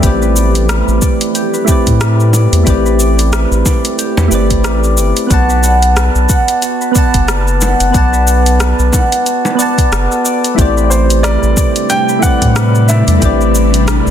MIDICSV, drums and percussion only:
0, 0, Header, 1, 2, 480
1, 0, Start_track
1, 0, Tempo, 659341
1, 23, Time_signature, 4, 2, 24, 8
1, 10269, End_track
2, 0, Start_track
2, 0, Title_t, "Drums"
2, 22, Note_on_c, 9, 36, 115
2, 23, Note_on_c, 9, 42, 47
2, 23, Note_on_c, 9, 69, 46
2, 95, Note_off_c, 9, 36, 0
2, 95, Note_off_c, 9, 42, 0
2, 96, Note_off_c, 9, 69, 0
2, 162, Note_on_c, 9, 69, 20
2, 234, Note_off_c, 9, 69, 0
2, 265, Note_on_c, 9, 69, 75
2, 338, Note_off_c, 9, 69, 0
2, 402, Note_on_c, 9, 42, 56
2, 403, Note_on_c, 9, 69, 32
2, 475, Note_off_c, 9, 42, 0
2, 476, Note_off_c, 9, 69, 0
2, 504, Note_on_c, 9, 37, 112
2, 504, Note_on_c, 9, 42, 48
2, 505, Note_on_c, 9, 69, 47
2, 577, Note_off_c, 9, 37, 0
2, 577, Note_off_c, 9, 42, 0
2, 578, Note_off_c, 9, 69, 0
2, 643, Note_on_c, 9, 69, 21
2, 716, Note_off_c, 9, 69, 0
2, 742, Note_on_c, 9, 36, 102
2, 743, Note_on_c, 9, 69, 72
2, 815, Note_off_c, 9, 36, 0
2, 816, Note_off_c, 9, 69, 0
2, 881, Note_on_c, 9, 42, 55
2, 881, Note_on_c, 9, 69, 32
2, 954, Note_off_c, 9, 42, 0
2, 954, Note_off_c, 9, 69, 0
2, 983, Note_on_c, 9, 42, 44
2, 984, Note_on_c, 9, 69, 40
2, 1056, Note_off_c, 9, 42, 0
2, 1056, Note_off_c, 9, 69, 0
2, 1122, Note_on_c, 9, 69, 21
2, 1194, Note_off_c, 9, 69, 0
2, 1222, Note_on_c, 9, 36, 109
2, 1223, Note_on_c, 9, 69, 77
2, 1295, Note_off_c, 9, 36, 0
2, 1295, Note_off_c, 9, 69, 0
2, 1360, Note_on_c, 9, 36, 57
2, 1361, Note_on_c, 9, 42, 50
2, 1361, Note_on_c, 9, 69, 30
2, 1433, Note_off_c, 9, 36, 0
2, 1433, Note_off_c, 9, 42, 0
2, 1434, Note_off_c, 9, 69, 0
2, 1462, Note_on_c, 9, 37, 110
2, 1462, Note_on_c, 9, 42, 43
2, 1463, Note_on_c, 9, 69, 45
2, 1535, Note_off_c, 9, 37, 0
2, 1535, Note_off_c, 9, 42, 0
2, 1536, Note_off_c, 9, 69, 0
2, 1602, Note_on_c, 9, 69, 21
2, 1675, Note_off_c, 9, 69, 0
2, 1698, Note_on_c, 9, 60, 64
2, 1704, Note_on_c, 9, 69, 82
2, 1771, Note_off_c, 9, 60, 0
2, 1776, Note_off_c, 9, 69, 0
2, 1841, Note_on_c, 9, 42, 59
2, 1842, Note_on_c, 9, 69, 30
2, 1914, Note_off_c, 9, 42, 0
2, 1915, Note_off_c, 9, 69, 0
2, 1942, Note_on_c, 9, 36, 127
2, 1942, Note_on_c, 9, 42, 46
2, 1943, Note_on_c, 9, 69, 47
2, 2014, Note_off_c, 9, 36, 0
2, 2015, Note_off_c, 9, 42, 0
2, 2016, Note_off_c, 9, 69, 0
2, 2082, Note_on_c, 9, 69, 21
2, 2155, Note_off_c, 9, 69, 0
2, 2183, Note_on_c, 9, 69, 74
2, 2256, Note_off_c, 9, 69, 0
2, 2322, Note_on_c, 9, 42, 53
2, 2323, Note_on_c, 9, 69, 35
2, 2395, Note_off_c, 9, 42, 0
2, 2396, Note_off_c, 9, 69, 0
2, 2423, Note_on_c, 9, 37, 108
2, 2423, Note_on_c, 9, 42, 47
2, 2424, Note_on_c, 9, 69, 48
2, 2496, Note_off_c, 9, 37, 0
2, 2496, Note_off_c, 9, 42, 0
2, 2497, Note_off_c, 9, 69, 0
2, 2563, Note_on_c, 9, 69, 23
2, 2635, Note_off_c, 9, 69, 0
2, 2661, Note_on_c, 9, 36, 108
2, 2663, Note_on_c, 9, 60, 64
2, 2664, Note_on_c, 9, 69, 79
2, 2734, Note_off_c, 9, 36, 0
2, 2736, Note_off_c, 9, 60, 0
2, 2737, Note_off_c, 9, 69, 0
2, 2801, Note_on_c, 9, 42, 53
2, 2802, Note_on_c, 9, 69, 35
2, 2874, Note_off_c, 9, 42, 0
2, 2875, Note_off_c, 9, 69, 0
2, 2904, Note_on_c, 9, 42, 42
2, 2904, Note_on_c, 9, 69, 44
2, 2976, Note_off_c, 9, 42, 0
2, 2977, Note_off_c, 9, 69, 0
2, 3039, Note_on_c, 9, 60, 95
2, 3042, Note_on_c, 9, 69, 23
2, 3111, Note_off_c, 9, 60, 0
2, 3115, Note_off_c, 9, 69, 0
2, 3143, Note_on_c, 9, 69, 74
2, 3216, Note_off_c, 9, 69, 0
2, 3280, Note_on_c, 9, 36, 58
2, 3280, Note_on_c, 9, 42, 56
2, 3280, Note_on_c, 9, 69, 32
2, 3352, Note_off_c, 9, 36, 0
2, 3352, Note_off_c, 9, 42, 0
2, 3353, Note_off_c, 9, 69, 0
2, 3381, Note_on_c, 9, 37, 106
2, 3381, Note_on_c, 9, 42, 44
2, 3382, Note_on_c, 9, 69, 46
2, 3454, Note_off_c, 9, 37, 0
2, 3454, Note_off_c, 9, 42, 0
2, 3455, Note_off_c, 9, 69, 0
2, 3522, Note_on_c, 9, 69, 22
2, 3595, Note_off_c, 9, 69, 0
2, 3623, Note_on_c, 9, 69, 86
2, 3696, Note_off_c, 9, 69, 0
2, 3761, Note_on_c, 9, 42, 54
2, 3762, Note_on_c, 9, 69, 35
2, 3834, Note_off_c, 9, 42, 0
2, 3834, Note_off_c, 9, 69, 0
2, 3862, Note_on_c, 9, 36, 126
2, 3863, Note_on_c, 9, 42, 44
2, 3864, Note_on_c, 9, 69, 45
2, 3935, Note_off_c, 9, 36, 0
2, 3936, Note_off_c, 9, 42, 0
2, 3937, Note_off_c, 9, 69, 0
2, 4001, Note_on_c, 9, 69, 23
2, 4074, Note_off_c, 9, 69, 0
2, 4103, Note_on_c, 9, 69, 73
2, 4176, Note_off_c, 9, 69, 0
2, 4240, Note_on_c, 9, 42, 55
2, 4241, Note_on_c, 9, 69, 35
2, 4313, Note_off_c, 9, 42, 0
2, 4314, Note_off_c, 9, 69, 0
2, 4343, Note_on_c, 9, 37, 110
2, 4343, Note_on_c, 9, 42, 43
2, 4344, Note_on_c, 9, 69, 48
2, 4416, Note_off_c, 9, 37, 0
2, 4416, Note_off_c, 9, 42, 0
2, 4417, Note_off_c, 9, 69, 0
2, 4481, Note_on_c, 9, 69, 24
2, 4553, Note_off_c, 9, 69, 0
2, 4582, Note_on_c, 9, 36, 110
2, 4582, Note_on_c, 9, 69, 81
2, 4654, Note_off_c, 9, 69, 0
2, 4655, Note_off_c, 9, 36, 0
2, 4720, Note_on_c, 9, 42, 53
2, 4720, Note_on_c, 9, 69, 32
2, 4792, Note_off_c, 9, 42, 0
2, 4793, Note_off_c, 9, 69, 0
2, 4821, Note_on_c, 9, 42, 45
2, 4822, Note_on_c, 9, 69, 45
2, 4894, Note_off_c, 9, 42, 0
2, 4895, Note_off_c, 9, 69, 0
2, 4960, Note_on_c, 9, 69, 23
2, 5033, Note_off_c, 9, 69, 0
2, 5063, Note_on_c, 9, 36, 112
2, 5063, Note_on_c, 9, 69, 79
2, 5136, Note_off_c, 9, 36, 0
2, 5136, Note_off_c, 9, 69, 0
2, 5199, Note_on_c, 9, 42, 53
2, 5199, Note_on_c, 9, 69, 33
2, 5201, Note_on_c, 9, 36, 60
2, 5272, Note_off_c, 9, 42, 0
2, 5272, Note_off_c, 9, 69, 0
2, 5274, Note_off_c, 9, 36, 0
2, 5303, Note_on_c, 9, 37, 104
2, 5303, Note_on_c, 9, 42, 42
2, 5303, Note_on_c, 9, 69, 46
2, 5375, Note_off_c, 9, 37, 0
2, 5375, Note_off_c, 9, 42, 0
2, 5376, Note_off_c, 9, 69, 0
2, 5442, Note_on_c, 9, 69, 23
2, 5515, Note_off_c, 9, 69, 0
2, 5543, Note_on_c, 9, 69, 83
2, 5548, Note_on_c, 9, 60, 76
2, 5616, Note_off_c, 9, 69, 0
2, 5621, Note_off_c, 9, 60, 0
2, 5681, Note_on_c, 9, 42, 54
2, 5682, Note_on_c, 9, 69, 36
2, 5754, Note_off_c, 9, 42, 0
2, 5755, Note_off_c, 9, 69, 0
2, 5783, Note_on_c, 9, 36, 125
2, 5784, Note_on_c, 9, 42, 40
2, 5785, Note_on_c, 9, 69, 45
2, 5856, Note_off_c, 9, 36, 0
2, 5857, Note_off_c, 9, 42, 0
2, 5857, Note_off_c, 9, 69, 0
2, 5922, Note_on_c, 9, 69, 23
2, 5995, Note_off_c, 9, 69, 0
2, 6024, Note_on_c, 9, 69, 79
2, 6097, Note_off_c, 9, 69, 0
2, 6161, Note_on_c, 9, 42, 52
2, 6162, Note_on_c, 9, 69, 36
2, 6234, Note_off_c, 9, 42, 0
2, 6235, Note_off_c, 9, 69, 0
2, 6262, Note_on_c, 9, 37, 110
2, 6262, Note_on_c, 9, 42, 47
2, 6263, Note_on_c, 9, 69, 50
2, 6335, Note_off_c, 9, 37, 0
2, 6335, Note_off_c, 9, 42, 0
2, 6336, Note_off_c, 9, 69, 0
2, 6401, Note_on_c, 9, 69, 22
2, 6474, Note_off_c, 9, 69, 0
2, 6497, Note_on_c, 9, 60, 68
2, 6503, Note_on_c, 9, 36, 107
2, 6504, Note_on_c, 9, 69, 86
2, 6570, Note_off_c, 9, 60, 0
2, 6576, Note_off_c, 9, 36, 0
2, 6577, Note_off_c, 9, 69, 0
2, 6642, Note_on_c, 9, 42, 50
2, 6642, Note_on_c, 9, 69, 31
2, 6714, Note_off_c, 9, 42, 0
2, 6715, Note_off_c, 9, 69, 0
2, 6744, Note_on_c, 9, 42, 43
2, 6745, Note_on_c, 9, 69, 43
2, 6817, Note_off_c, 9, 42, 0
2, 6817, Note_off_c, 9, 69, 0
2, 6880, Note_on_c, 9, 60, 80
2, 6884, Note_on_c, 9, 69, 22
2, 6952, Note_off_c, 9, 60, 0
2, 6957, Note_off_c, 9, 69, 0
2, 6986, Note_on_c, 9, 69, 73
2, 7059, Note_off_c, 9, 69, 0
2, 7121, Note_on_c, 9, 36, 62
2, 7123, Note_on_c, 9, 42, 48
2, 7124, Note_on_c, 9, 69, 32
2, 7193, Note_off_c, 9, 36, 0
2, 7196, Note_off_c, 9, 42, 0
2, 7197, Note_off_c, 9, 69, 0
2, 7225, Note_on_c, 9, 37, 101
2, 7225, Note_on_c, 9, 42, 45
2, 7226, Note_on_c, 9, 69, 44
2, 7298, Note_off_c, 9, 37, 0
2, 7298, Note_off_c, 9, 42, 0
2, 7299, Note_off_c, 9, 69, 0
2, 7365, Note_on_c, 9, 69, 22
2, 7438, Note_off_c, 9, 69, 0
2, 7466, Note_on_c, 9, 69, 81
2, 7539, Note_off_c, 9, 69, 0
2, 7604, Note_on_c, 9, 42, 49
2, 7605, Note_on_c, 9, 69, 35
2, 7677, Note_off_c, 9, 42, 0
2, 7677, Note_off_c, 9, 69, 0
2, 7702, Note_on_c, 9, 36, 117
2, 7706, Note_on_c, 9, 42, 43
2, 7707, Note_on_c, 9, 69, 46
2, 7775, Note_off_c, 9, 36, 0
2, 7779, Note_off_c, 9, 42, 0
2, 7780, Note_off_c, 9, 69, 0
2, 7844, Note_on_c, 9, 69, 22
2, 7917, Note_off_c, 9, 69, 0
2, 7945, Note_on_c, 9, 69, 70
2, 8018, Note_off_c, 9, 69, 0
2, 8084, Note_on_c, 9, 42, 53
2, 8084, Note_on_c, 9, 69, 33
2, 8156, Note_off_c, 9, 42, 0
2, 8157, Note_off_c, 9, 69, 0
2, 8184, Note_on_c, 9, 37, 104
2, 8184, Note_on_c, 9, 42, 45
2, 8184, Note_on_c, 9, 69, 46
2, 8256, Note_off_c, 9, 37, 0
2, 8256, Note_off_c, 9, 42, 0
2, 8257, Note_off_c, 9, 69, 0
2, 8322, Note_on_c, 9, 69, 22
2, 8395, Note_off_c, 9, 69, 0
2, 8423, Note_on_c, 9, 36, 101
2, 8424, Note_on_c, 9, 69, 78
2, 8496, Note_off_c, 9, 36, 0
2, 8497, Note_off_c, 9, 69, 0
2, 8560, Note_on_c, 9, 42, 48
2, 8561, Note_on_c, 9, 69, 30
2, 8633, Note_off_c, 9, 42, 0
2, 8633, Note_off_c, 9, 69, 0
2, 8662, Note_on_c, 9, 42, 43
2, 8663, Note_on_c, 9, 69, 44
2, 8735, Note_off_c, 9, 42, 0
2, 8735, Note_off_c, 9, 69, 0
2, 8801, Note_on_c, 9, 69, 23
2, 8874, Note_off_c, 9, 69, 0
2, 8904, Note_on_c, 9, 36, 109
2, 8904, Note_on_c, 9, 69, 76
2, 8976, Note_off_c, 9, 36, 0
2, 8977, Note_off_c, 9, 69, 0
2, 9041, Note_on_c, 9, 36, 61
2, 9041, Note_on_c, 9, 42, 52
2, 9041, Note_on_c, 9, 69, 34
2, 9114, Note_off_c, 9, 36, 0
2, 9114, Note_off_c, 9, 42, 0
2, 9114, Note_off_c, 9, 69, 0
2, 9144, Note_on_c, 9, 37, 102
2, 9144, Note_on_c, 9, 42, 42
2, 9144, Note_on_c, 9, 69, 48
2, 9216, Note_off_c, 9, 37, 0
2, 9216, Note_off_c, 9, 42, 0
2, 9217, Note_off_c, 9, 69, 0
2, 9283, Note_on_c, 9, 69, 22
2, 9356, Note_off_c, 9, 69, 0
2, 9383, Note_on_c, 9, 69, 84
2, 9388, Note_on_c, 9, 60, 72
2, 9456, Note_off_c, 9, 69, 0
2, 9461, Note_off_c, 9, 60, 0
2, 9521, Note_on_c, 9, 42, 51
2, 9522, Note_on_c, 9, 69, 31
2, 9594, Note_off_c, 9, 42, 0
2, 9594, Note_off_c, 9, 69, 0
2, 9624, Note_on_c, 9, 36, 119
2, 9624, Note_on_c, 9, 42, 46
2, 9625, Note_on_c, 9, 69, 47
2, 9696, Note_off_c, 9, 36, 0
2, 9697, Note_off_c, 9, 42, 0
2, 9697, Note_off_c, 9, 69, 0
2, 9763, Note_on_c, 9, 69, 20
2, 9836, Note_off_c, 9, 69, 0
2, 9865, Note_on_c, 9, 69, 72
2, 9938, Note_off_c, 9, 69, 0
2, 10002, Note_on_c, 9, 42, 57
2, 10003, Note_on_c, 9, 69, 30
2, 10075, Note_off_c, 9, 42, 0
2, 10076, Note_off_c, 9, 69, 0
2, 10103, Note_on_c, 9, 37, 106
2, 10103, Note_on_c, 9, 42, 45
2, 10104, Note_on_c, 9, 69, 44
2, 10176, Note_off_c, 9, 37, 0
2, 10176, Note_off_c, 9, 42, 0
2, 10177, Note_off_c, 9, 69, 0
2, 10243, Note_on_c, 9, 69, 21
2, 10269, Note_off_c, 9, 69, 0
2, 10269, End_track
0, 0, End_of_file